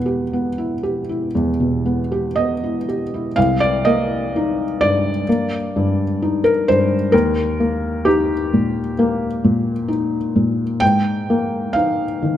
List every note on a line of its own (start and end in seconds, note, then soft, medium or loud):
0.00 1.31 E2 medium
0.00 1.60 B2 soft
0.00 0.23 B3 soft
0.00 2.86 B4 medium
0.06 0.48 G4 soft
0.33 0.75 B3 soft
0.58 1.00 E4 soft
0.83 1.25 G4 soft
1.09 1.50 E4 soft
1.35 3.32 E2 medium
1.60 2.01 B2 soft
1.86 2.26 B3 soft
2.12 2.52 G4 soft
2.36 2.78 B3 soft
2.36 3.36 D#5 medium
2.64 3.03 E4 soft
2.89 3.28 G4 soft
3.14 3.38 E4 soft
3.36 5.23 C2 medium
3.36 3.61 F5 loud
3.60 3.85 D5 loud
3.85 4.62 A#3 medium
3.85 4.80 D#5 medium
4.36 5.10 D#4 medium
4.81 5.56 G2 soft
4.81 6.43 D5 loud
5.29 6.02 A#3 medium
5.76 6.49 G2 medium
6.22 6.95 D#4 medium
6.44 6.67 A#4 medium
6.68 7.14 G2 medium
6.68 7.13 C5 loud
7.12 8.94 D#2 medium
7.12 8.05 A#4 loud
7.60 8.34 A#3 medium
8.05 8.79 D#4 medium
8.05 9.89 G4 medium
8.53 9.26 A#2 soft
8.99 9.72 A#3 medium
9.44 10.18 A#2 medium
9.88 10.63 D#4 medium
10.36 10.82 A#2 medium
10.80 12.37 G#2 medium
10.80 11.75 G5 loud
11.30 12.05 A#3 medium
11.73 12.37 D#4 medium
11.73 12.37 F5 medium
12.22 12.37 D#3 soft